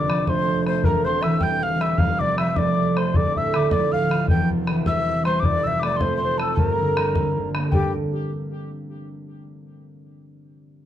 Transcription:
0.00 0.90 F1 medium
0.00 0.90 F2 medium
0.00 0.47 C3 medium
0.00 0.32 A#3 medium
0.00 0.23 C4 soft
0.00 2.33 D4 medium
0.00 0.74 G4 medium
0.00 0.27 D5 medium
0.00 0.19 D6 loud
0.08 0.52 F3 medium
0.08 bodhran medium
0.19 0.31 D6 medium
0.26 0.66 A3 medium
0.26 0.64 C5 medium
0.26 0.60 C6 medium
0.26 bodhran medium
0.48 0.90 C3 medium
0.67 2.56 A3 medium
0.67 0.86 C5 medium
0.67 bodhran medium
0.84 2.05 E1 medium
0.84 2.05 E2 medium
0.84 1.06 A#4 medium
0.84 1.05 A#5 loud
0.84 bodhran medium
1.05 1.61 C3 medium
1.05 1.23 C5 medium
1.05 1.25 C6 loud
1.05 bodhran soft
1.22 1.66 E3 medium
1.22 1.39 E5 medium
1.22 1.45 E6 loud
1.22 bodhran medium
1.40 1.80 G3 medium
1.40 1.64 G5 medium
1.40 1.65 G6 loud
1.40 bodhran medium
1.63 2.05 C3 medium
1.63 1.83 F5 medium
1.63 1.83 F6 loud
1.81 2.05 G3 medium
1.81 2.01 E5 loud
1.81 1.99 E6 loud
1.81 bodhran medium
1.98 3.19 F1 medium
1.98 3.19 F2 medium
1.98 2.22 F5 medium
1.98 2.20 F6 loud
1.98 bodhran medium
2.19 2.77 C3 medium
2.19 2.38 D5 medium
2.19 2.39 D6 loud
2.19 bodhran soft
2.38 2.81 F3 medium
2.38 2.50 E5 medium
2.38 2.49 E6 medium
2.38 bodhran medium
2.49 2.60 E5 medium
2.49 2.57 E6 medium
2.56 2.95 A3 medium
2.56 2.99 D5 medium
2.56 2.99 D6 loud
2.56 bodhran medium
2.78 3.19 C3 medium
2.96 5.82 A3 medium
2.96 3.17 C5 medium
2.96 3.18 C6 medium
2.96 bodhran medium
3.14 4.34 D1 medium
3.14 4.34 D2 medium
3.14 3.35 D5 medium
3.14 3.39 D6 loud
3.14 bodhran medium
3.36 3.57 A2 medium
3.36 3.74 E5 medium
3.36 3.57 E6 loud
3.36 bodhran soft
3.54 3.96 D3 medium
3.54 3.71 D6 medium
3.54 bodhran medium
3.71 4.12 F3 medium
3.71 3.92 D5 medium
3.71 3.94 D6 medium
3.71 bodhran medium
3.92 4.34 A2 medium
3.92 4.26 F5 medium
3.92 4.29 F6 loud
4.11 4.34 F3 medium
4.11 bodhran medium
4.28 5.48 E1 medium
4.28 5.48 E2 medium
4.28 4.49 G5 medium
4.28 4.49 G6 medium
4.28 bodhran medium
4.50 5.08 C3 medium
4.50 bodhran soft
4.67 5.10 E3 medium
4.67 bodhran medium
4.86 5.25 G3 medium
4.86 5.23 E5 loud
4.86 5.23 E6 loud
4.86 bodhran medium
5.09 5.48 C3 medium
5.25 5.48 G3 medium
5.25 5.47 C5 medium
5.25 5.41 C6 loud
5.25 bodhran medium
5.40 5.65 D6 loud
5.40 bodhran medium
5.44 6.63 F1 medium
5.44 6.63 F2 medium
5.44 5.69 D5 loud
5.63 6.20 C3 medium
5.63 5.84 E5 medium
5.63 5.81 E6 loud
5.63 bodhran soft
5.80 7.21 A3 medium
5.80 5.98 D6 loud
5.80 bodhran medium
5.85 6.03 D5 medium
5.97 6.39 C4 medium
5.97 6.16 C6 loud
6.01 6.22 C5 medium
6.01 bodhran medium
6.17 6.39 C6 loud
6.21 6.63 C3 medium
6.21 6.40 C5 medium
6.38 9.39 C4 medium
6.38 6.57 A4 medium
6.38 6.54 A5 medium
6.38 bodhran medium
6.55 7.78 G1 medium
6.55 7.71 G2 medium
6.55 7.50 A#4 medium
6.55 6.72 A5 medium
6.55 bodhran medium
6.72 7.49 A#5 medium
6.79 7.35 D3 medium
6.79 bodhran soft
6.97 7.39 G3 medium
6.97 bodhran medium
7.15 7.36 A#3 medium
7.15 bodhran medium
7.36 7.71 D3 medium
7.55 7.73 A#3 medium
7.55 bodhran medium
7.71 7.92 G2 medium
7.71 7.92 D3 medium
7.71 7.92 G3 medium
7.71 7.93 D4 medium
7.71 7.93 G4 medium
7.71 7.93 A#4 medium
7.71 7.93 D5 medium
7.71 7.92 G5 medium
7.71 bodhran medium

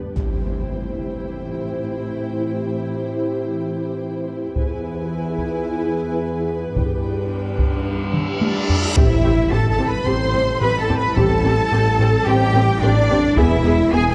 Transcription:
0.00 0.16 G3 medium
0.00 0.16 D4 medium
0.00 0.15 G4 medium
0.00 0.16 B4 medium
0.15 4.52 A2 soft
0.15 4.53 E3 medium
0.15 4.53 C4 soft
0.15 4.52 E4 soft
0.15 4.53 E4 medium
0.15 4.53 G4 medium
0.15 4.53 G4 soft
0.15 4.53 C5 soft
0.15 4.52 G5 soft
0.15 taiko soft
0.15 impact soft
4.56 6.72 E2 medium
4.56 6.72 E3 medium
4.56 8.65 B3 medium
4.56 6.72 E4 medium
4.56 6.73 E4 medium
4.56 6.76 G#4 medium
4.56 6.60 G#4 medium
4.56 8.97 B4 medium
4.56 8.38 B4 medium
4.56 6.73 G#5 medium
4.56 taiko medium
5.39 taiko soft
6.75 8.38 G2 medium
6.75 8.96 G3 medium
6.75 8.96 D4 medium
6.75 8.73 D4 soft
6.75 8.96 G4 medium
6.75 8.65 G4 soft
6.75 8.37 G5 soft
6.75 taiko medium
6.75 reverse cymbal soft
7.59 taiko medium
8.14 taiko mid medium
8.41 8.93 D4 medium
8.41 8.93 D5 medium
8.41 taiko high medium
8.69 taiko low medium
8.95 9.46 A1 medium
8.95 9.13 A2 medium
8.95 13.33 G3 medium
8.95 9.04 C4 medium
8.95 13.33 C4 medium
8.95 9.16 C4 medium
8.95 13.33 E4 medium
8.95 9.51 E4 loud
8.95 9.03 G4 medium
8.95 9.16 G4 medium
8.95 13.33 A4 medium
8.95 9.52 E5 medium
8.95 taiko loud
8.95 impact medium
9.23 9.40 A2 medium
9.23 9.31 C4 medium
9.23 9.31 G4 medium
9.50 10.01 A1 medium
9.50 9.68 A2 medium
9.50 9.59 C4 medium
9.50 9.58 G4 medium
9.50 9.70 A4 loud
9.50 9.69 A5 medium
9.70 9.88 A4 medium
9.70 9.88 A5 medium
9.78 9.95 A2 loud
9.78 9.87 C4 medium
9.78 9.86 G4 medium
9.88 10.07 B4 medium
9.88 10.06 B5 medium
9.88 10.07 B5 medium
10.06 10.56 A1 medium
10.06 10.23 A2 medium
10.06 10.14 C4 medium
10.06 10.26 C4 medium
10.06 10.14 G4 medium
10.06 10.26 G4 medium
10.06 10.62 C5 loud
10.06 10.61 C6 medium
10.06 10.62 C6 medium
10.33 10.51 A2 medium
10.33 10.41 C4 medium
10.33 10.41 G4 medium
10.61 11.11 A1 medium
10.61 10.78 A2 loud
10.61 10.69 C4 medium
10.61 10.69 G4 medium
10.61 10.80 B4 loud
10.61 10.79 B5 loud
10.61 10.80 B5 medium
10.78 10.98 A4 loud
10.78 10.98 A5 medium
10.88 11.06 A2 medium
10.88 10.96 C4 medium
10.88 10.96 G4 medium
10.88 taiko low medium
10.98 11.17 B4 loud
10.98 11.16 B5 medium
11.15 11.65 A1 medium
11.15 11.33 A2 loud
11.15 11.35 C4 medium
11.15 11.25 C4 medium
11.15 11.24 G4 medium
11.15 11.36 G4 medium
11.15 12.25 A4 loud
11.15 12.26 A5 loud
11.15 12.27 A5 loud
11.15 taiko loud
11.44 11.61 A2 medium
11.44 11.52 C4 medium
11.44 11.52 G4 medium
11.72 12.21 A1 medium
11.72 11.88 A2 medium
11.72 11.80 C4 medium
11.72 11.80 G4 medium
11.99 12.16 A2 loud
11.99 12.08 C4 medium
11.99 12.08 G4 medium
12.26 12.75 A1 loud
12.26 12.43 A2 medium
12.26 12.46 C4 medium
12.26 12.35 C4 medium
12.26 12.82 G4 loud
12.26 12.46 G4 medium
12.26 12.35 G4 medium
12.26 12.82 G5 loud
12.54 12.70 A2 medium
12.54 12.63 C4 medium
12.54 12.63 G4 medium
12.82 13.30 A1 loud
12.82 12.98 A2 loud
12.82 12.91 C4 medium
12.82 13.37 D4 loud
12.82 12.91 G4 medium
12.82 13.37 D5 loud
13.10 13.26 A2 medium
13.10 13.18 C4 medium
13.10 13.18 G4 medium
13.10 taiko low medium
13.37 13.85 E1 loud
13.37 13.53 E2 loud
13.37 14.15 G#3 medium
13.37 14.15 B3 medium
13.37 13.57 B3 loud
13.37 13.46 B3 medium
13.37 14.15 E4 medium
13.37 13.92 E4 loud
13.37 13.45 G#4 medium
13.37 13.57 G#4 loud
13.37 14.15 B4 medium
13.37 13.91 E5 loud
13.37 13.92 E5 medium
13.37 taiko loud
13.65 13.81 E2 medium
13.65 13.73 B3 medium
13.65 13.73 G#4 medium
13.92 14.15 E1 loud
13.92 14.09 E2 medium
13.92 14.01 B3 medium
13.92 14.10 G#4 loud
13.92 14.01 G#4 medium
13.92 14.09 G#5 loud
14.10 14.15 G#4 loud
14.10 14.15 G#5 loud

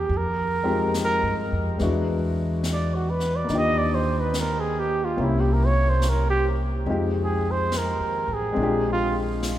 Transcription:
0.00 0.11 C4 soft
0.00 0.11 D4 soft
0.00 0.19 G4 medium
0.08 1.19 F2 medium
0.08 brush sweep soft
0.17 0.98 A#4 medium
0.63 1.76 G#3 medium
0.63 1.78 C4 medium
0.63 1.79 D#4 soft
0.63 1.79 F4 medium
0.63 1.79 G4 medium
0.94 snare soft
0.94 hi-hat pedal medium
1.04 1.35 A#4 medium
1.23 1.49 G2 medium
1.52 1.78 F2 medium
1.78 3.45 E2 medium
1.78 3.48 G#3 medium
1.78 3.48 B3 medium
1.78 3.46 D4 medium
1.78 brush sweep soft
1.78 snare soft
1.82 3.50 E4 medium
1.82 3.50 F#4 medium
2.64 snare soft
2.64 hi-hat pedal medium
2.73 2.96 D5 medium
2.95 3.12 F#4 medium
3.10 3.37 B4 medium
3.20 snare soft
3.36 3.59 D5 medium
3.44 5.15 A#3 medium
3.44 5.17 D4 medium
3.48 5.14 D#2 medium
3.48 5.18 D#4 medium
3.48 5.19 F4 medium
3.48 brush sweep soft
3.48 snare soft
3.55 5.19 G4 medium
3.55 3.80 D#5 loud
3.78 3.96 D5 medium
3.95 4.22 C5 medium
4.20 4.41 B4 medium
4.34 snare medium
4.34 hi-hat pedal medium
4.40 4.62 A#4 medium
4.60 4.81 G#4 medium
4.80 5.06 G4 medium
5.05 5.26 F4 medium
5.17 6.83 C2 medium
5.17 6.86 A#3 medium
5.17 6.85 C4 medium
5.17 6.88 C#4 medium
5.17 6.88 E4 soft
5.17 6.88 G4 medium
5.17 brush sweep soft
5.24 5.42 E4 medium
5.40 5.55 G4 medium
5.53 5.67 A#4 medium
5.65 5.91 C#5 loud
5.90 6.11 C5 medium
6.02 snare medium
6.02 hi-hat pedal medium
6.09 6.29 A#4 medium
6.30 6.47 G4 medium
6.86 7.96 F2 medium
6.86 8.51 G#3 medium
6.86 8.52 C4 medium
6.86 8.58 D#4 medium
6.86 8.58 F4 medium
6.86 brush sweep soft
6.91 8.59 G4 medium
7.24 7.53 G#4 medium
7.51 7.79 C5 medium
7.72 snare medium
7.72 hi-hat pedal medium
7.77 8.35 A#4 medium
7.99 8.26 D#2 medium
8.28 8.55 A1 medium
8.34 8.88 G#4 medium
8.52 9.59 G#3 medium
8.52 9.59 C4 medium
8.56 9.59 A#1 medium
8.56 9.59 D4 medium
8.56 9.59 F4 medium
8.56 brush sweep soft
8.63 9.59 G4 medium
8.93 9.19 F4 medium
9.43 snare medium
9.43 hi-hat pedal medium

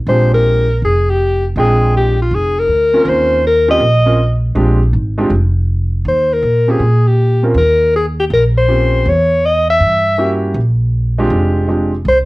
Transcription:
0.07 0.78 A#1 medium
0.07 0.65 G#3 medium
0.07 0.65 C4 soft
0.07 0.65 D4 medium
0.07 0.65 F4 medium
0.07 0.65 G4 medium
0.07 0.31 C5 medium
0.34 0.80 A#4 medium
0.82 1.53 F1 medium
0.82 1.12 G#4 medium
1.10 1.46 G4 medium
1.56 2.27 A#1 medium
1.56 2.14 G#3 medium
1.56 2.14 C4 medium
1.56 2.15 D4 medium
1.56 2.15 F4 medium
1.56 1.93 G#4 medium
1.56 2.15 G5 medium
1.97 2.19 G4 medium
2.22 2.36 F4 medium
2.31 2.66 F1 medium
2.31 2.61 G#4 medium
2.59 3.11 A#4 loud
2.68 3.03 D2 medium
2.93 3.41 A#3 medium
2.93 3.41 C4 medium
2.93 3.41 C#4 medium
2.93 3.42 F4 medium
2.93 3.42 A#4 medium
3.05 3.77 D#2 medium
3.09 3.45 C5 loud
3.47 3.68 A#4 loud
3.68 3.80 A#3 medium
3.68 3.80 C4 medium
3.68 3.80 C#4 medium
3.68 3.80 F4 medium
3.68 3.80 G4 medium
3.68 4.40 D#5 loud
3.80 4.52 A#1 medium
4.06 4.17 A#3 medium
4.06 4.17 C4 medium
4.06 4.18 C#4 medium
4.06 4.18 F4 medium
4.06 4.18 A#4 medium
4.55 4.91 A#1 medium
4.55 4.78 G#3 medium
4.55 4.78 C4 medium
4.55 4.78 D4 medium
4.55 4.78 F4 medium
4.55 4.78 G4 medium
4.93 5.28 G#1 medium
5.18 5.29 G#3 medium
5.18 5.30 C4 medium
5.18 5.30 D4 medium
5.18 5.30 F4 medium
5.18 5.30 G4 medium
5.30 6.02 F1 medium
6.05 6.40 D#2 medium
6.05 6.35 C5 medium
6.33 6.72 A#4 medium
6.43 6.78 A#2 medium
6.68 6.79 A#3 medium
6.68 6.79 C4 medium
6.68 6.80 C#4 medium
6.68 6.80 F4 medium
6.68 6.80 G4 medium
6.68 7.09 G#4 medium
6.79 7.51 A#2 medium
7.08 7.44 G4 medium
7.43 7.54 A#3 medium
7.43 7.55 C4 medium
7.43 7.55 C#4 medium
7.43 7.55 F4 medium
7.43 7.55 A#4 medium
7.54 8.26 D#2 medium
7.54 7.92 A#4 loud
7.96 8.06 G#4 medium
8.20 8.25 G4 medium
8.30 9.02 A#1 medium
8.30 8.44 A#4 medium
8.58 9.10 C5 loud
8.68 9.06 A#3 soft
8.68 9.06 C4 soft
8.68 9.06 C#4 soft
8.68 9.06 F4 soft
8.68 9.06 G4 medium
9.05 9.77 E2 medium
9.05 9.47 C#5 loud
9.46 9.69 D#5 loud
9.70 10.40 E5 medium
9.80 10.51 G2 medium
10.18 10.55 A#3 medium
10.18 10.55 C#4 medium
10.18 10.55 E4 medium
10.18 10.56 F#4 medium
10.18 10.56 G4 medium
10.54 11.26 A#1 medium
11.18 11.66 G#3 medium
11.18 11.66 C4 medium
11.18 11.66 D4 medium
11.18 11.66 F4 medium
11.18 11.66 G4 medium
11.30 12.01 F1 medium
11.68 11.90 G#3 medium
11.68 11.91 C4 medium
11.68 11.90 D4 medium
11.68 11.91 F4 medium
11.68 11.91 G4 medium
12.05 12.25 C2 medium
12.05 12.19 C5 loud

